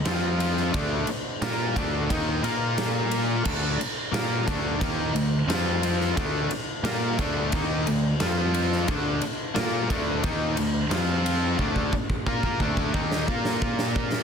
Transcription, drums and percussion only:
0.05 snare, ride
0.40 ride
0.57 snare
0.74 kick, ride
1.07 ride
1.42 snare, ride
1.76 kick, ride
2.10 kick, ride
2.44 ride
2.78 snare, ride
3.11 ride
3.45 kick, crash
3.81 ride
4.14 snare, ride
4.48 kick, ride
4.81 kick, ride
5.16 ride
5.50 snare, ride
5.83 ride
6.01 snare
6.17 kick, ride
6.51 ride
6.85 snare, ride
7.19 kick, ride
7.52 kick, ride
7.87 ride
8.20 snare, ride
8.54 ride
8.72 snare
8.88 kick, ride
9.22 ride
9.56 snare, ride
9.90 kick, ride
10.24 kick, ride
10.57 ride
10.91 snare, ride
11.26 ride
11.59 kick
11.76 kick
11.93 kick
12.10 kick
12.27 kick
12.43 kick
12.60 kick
12.77 kick
12.94 kick
13.12 snare
13.28 kick
13.45 snare
13.62 kick
13.79 snare
13.96 kick
14.12 snare

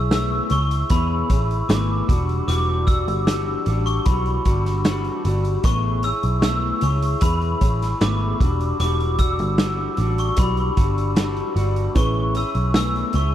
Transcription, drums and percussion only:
0.11 snare, closed hi-hat
0.50 closed hi-hat
0.71 closed hi-hat
0.90 kick, closed hi-hat
1.30 kick, closed hi-hat
1.51 closed hi-hat
1.69 snare, closed hi-hat
2.09 kick, closed hi-hat
2.29 closed hi-hat
2.49 closed hi-hat
2.87 kick, closed hi-hat
3.08 closed hi-hat
3.27 snare, closed hi-hat
3.66 closed hi-hat
3.87 closed hi-hat
4.05 kick, closed hi-hat
4.26 closed hi-hat
4.45 kick, closed hi-hat
4.66 snare, closed hi-hat
4.85 snare, closed hi-hat
5.04 closed hi-hat
5.25 closed hi-hat
5.45 closed hi-hat
5.64 kick, closed hi-hat
6.03 closed hi-hat
6.23 closed hi-hat
6.42 snare, closed hi-hat
6.81 closed hi-hat
7.02 closed hi-hat
7.21 kick, closed hi-hat
7.41 closed hi-hat
7.61 kick, closed hi-hat
7.82 snare, closed hi-hat
8.01 snare, closed hi-hat
8.40 kick, closed hi-hat
8.60 closed hi-hat
8.80 closed hi-hat
9.00 closed hi-hat
9.18 kick, closed hi-hat
9.39 closed hi-hat
9.58 snare, closed hi-hat
9.97 closed hi-hat
10.18 closed hi-hat
10.37 kick, closed hi-hat
10.57 closed hi-hat
10.77 kick, closed hi-hat
10.98 closed hi-hat
11.16 snare, closed hi-hat
11.36 closed hi-hat
11.56 closed hi-hat
11.76 closed hi-hat
11.95 kick, closed hi-hat
12.35 closed hi-hat
12.55 closed hi-hat
12.74 snare, closed hi-hat
12.96 closed hi-hat
13.13 closed hi-hat

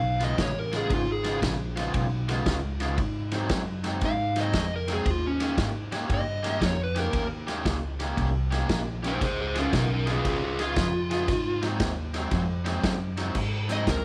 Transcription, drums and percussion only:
0.20 snare, ride
0.38 kick, snare, ride
0.73 snare, ride
0.90 kick, ride
1.24 snare, ride
1.42 kick, snare, ride
1.77 snare, ride
1.94 kick, ride
2.29 snare, ride
2.46 kick, snare, ride
2.80 snare, ride
2.98 kick, ride
3.32 snare, ride
3.49 kick, snare, ride
3.84 snare, ride
4.01 kick, snare, ride
4.36 snare, ride
4.53 kick, snare, ride
4.88 snare, ride
5.06 kick, ride
5.40 snare, ride
5.58 kick, snare, ride
5.92 snare, ride
6.10 kick, ride
6.44 snare, ride
6.61 kick, snare, ride
6.96 snare, ride
7.13 kick, ride
7.48 snare, ride
7.65 kick, snare, ride
8.00 snare, ride
8.17 kick, ride
8.52 snare, ride
8.69 kick, snare, ride
9.04 snare, ride
9.21 kick, snare, ride
9.55 snare, ride
9.73 kick, snare, ride
10.07 snare, ride
10.25 kick, ride
10.59 snare, ride
10.76 kick, snare, ride
11.11 snare, ride
11.28 kick, snare, ride
11.63 snare, ride
11.80 kick, snare, ride
12.14 snare, ride
12.31 kick, snare, ride
12.66 snare, ride
12.84 kick, snare, ride
13.17 snare, ride
13.35 kick, snare, crash
13.69 snare, closed hi-hat
13.87 kick, snare, closed hi-hat

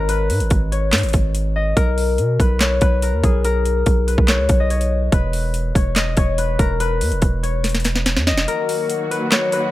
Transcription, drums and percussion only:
0.09 closed hi-hat
0.30 closed hi-hat, open hi-hat
0.40 closed hi-hat
0.50 kick, closed hi-hat
0.72 closed hi-hat
0.93 snare, clap, closed hi-hat
0.98 closed hi-hat
1.03 closed hi-hat
1.09 closed hi-hat
1.13 kick, closed hi-hat
1.35 closed hi-hat
1.77 kick, closed hi-hat
1.98 open hi-hat
2.18 closed hi-hat
2.40 kick, closed hi-hat
2.60 snare, clap, closed hi-hat
2.81 kick, closed hi-hat
3.02 closed hi-hat
3.24 kick, closed hi-hat
3.45 closed hi-hat
3.65 closed hi-hat
3.86 kick, closed hi-hat
4.08 closed hi-hat
4.18 kick
4.28 snare, clap, closed hi-hat
4.49 kick, closed hi-hat
4.70 closed hi-hat
4.81 closed hi-hat
5.12 kick, closed hi-hat
5.33 open hi-hat
5.54 closed hi-hat
5.75 kick, closed hi-hat
5.96 snare, clap, closed hi-hat
6.17 kick, closed hi-hat
6.38 closed hi-hat
6.59 kick, closed hi-hat
6.80 closed hi-hat
7.01 closed hi-hat, open hi-hat
7.12 closed hi-hat
7.22 kick, closed hi-hat
7.44 closed hi-hat
7.64 snare, closed hi-hat
7.69 closed hi-hat
7.75 snare, closed hi-hat
7.80 closed hi-hat
7.85 snare, closed hi-hat
7.96 snare
8.06 snare, closed hi-hat
8.17 snare
8.27 snare
8.38 snare
8.48 closed hi-hat
8.69 open hi-hat
8.90 closed hi-hat
9.11 closed hi-hat
9.32 snare, clap, closed hi-hat
9.52 closed hi-hat

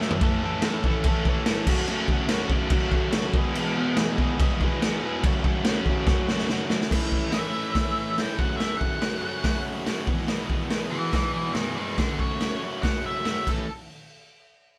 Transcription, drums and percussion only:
0.01 snare
0.11 floor tom
0.21 kick, crash
0.62 snare, crash
0.84 kick
1.04 kick, crash
1.25 kick
1.46 snare, crash
1.67 kick, crash
1.87 crash
2.08 kick
2.29 snare, crash
2.50 kick
2.70 kick, crash
2.92 kick
3.12 snare, crash
3.34 kick
3.55 crash
3.97 snare, crash
4.18 kick
4.40 kick, crash
4.61 kick
4.82 snare, crash
5.24 kick, crash
5.44 kick
5.65 snare, crash
5.86 kick
6.07 kick, snare
6.28 snare
6.39 snare
6.49 snare
6.70 snare
6.81 snare
6.91 kick, snare, crash
7.12 kick
7.32 snare, open hi-hat
7.75 kick, snare, open hi-hat
8.18 snare, open hi-hat
8.39 kick
8.60 snare, open hi-hat
8.81 kick
9.02 snare, open hi-hat
9.44 kick, snare, open hi-hat
9.86 snare, open hi-hat
10.07 kick
10.28 snare, open hi-hat
10.50 kick
10.70 snare, open hi-hat
11.13 kick, snare, open hi-hat
11.55 snare, open hi-hat
11.98 kick, snare, open hi-hat
12.19 kick
12.41 snare, open hi-hat
12.83 kick, snare, open hi-hat
13.25 snare, open hi-hat
13.47 kick, crash

